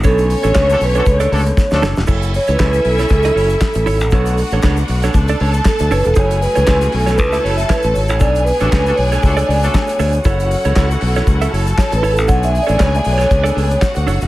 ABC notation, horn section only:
X:1
M:4/4
L:1/16
Q:"Swing 16ths" 1/4=118
K:F#m
V:1 name="Horn section"
z4 z [A,DFA] z [A,DFA] z2 [A,DFA] z2 [A,DFA]3 | z16 | z16 | z16 |
z3 [A,DFA] z [A,DFA] z2 [A,DFA] z2 [A,DFA]3 z2 | z16 | z16 |]